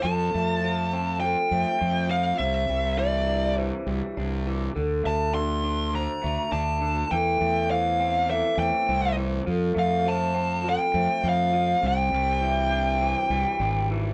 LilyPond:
<<
  \new Staff \with { instrumentName = "Lead electric guitar" } { \time 4/4 \key f \major \tempo 4 = 102 a''2 g''4. f''8 | e''4 d''4 r2 | r8 a''8 c'''4 bes''4 a''4 | g''4 f''4 e''8 g''4 r8 |
r8 f''8 a''4 g''4 f''4 | g''2.~ g''8 r8 | }
  \new Staff \with { instrumentName = "Vibraphone" } { \time 4/4 \key f \major a'4 c''4 a'8 r8 c''4 | c''4 e''4 c''8 d''8 d''4 | a'4 d''4 c''8 r8 d''4 | a'4 c''4 a'8 c''8 c''4 |
a'4 c''4 a'8 c''8 c''4 | c''4 e''4 c''8 d''8 d''4 | }
  \new Staff \with { instrumentName = "Clean electric guitar" } { \clef bass \time 4/4 \key f \major f8 a8 f8 c'8 f8 a8 c'8 f8 | c8 g8 e8 d'8 e8 g8 d'8 e8 | d8 a8 d8 d'8 d8 a8 d'8 d8 | e8 a8 e8 c'8 e8 a8 c'8 e8 |
f8 a8 f8 c'8 f8 a8 c'8 f8 | c8 g8 e8 d'8 e8 g8 d'8 e8 | }
  \new Staff \with { instrumentName = "Fingered electric bass" } { \clef bass \time 4/4 \key f \major f,8 f,2 f,16 r16 f,4 | c,8 c,2 c,16 r16 c,4 | d,8 d,2 d,16 r16 d,4 | e,8 e,2 e,16 r16 c,4 |
f,8 f,2 f,16 r16 f,4 | c,8 c,2 c,16 r16 aes,,4 | }
>>